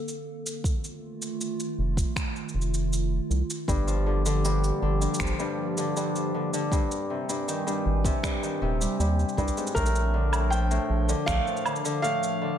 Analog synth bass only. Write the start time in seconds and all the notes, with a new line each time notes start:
1.78 F1
2.54 F1
3.30 C2
3.68 G1
4.82 G1
5.20 G1
7.86 G#1
8.62 D#1
8.99 D#2
9.37 C2
9.75 A#1
10.90 A#1
11.27 A#1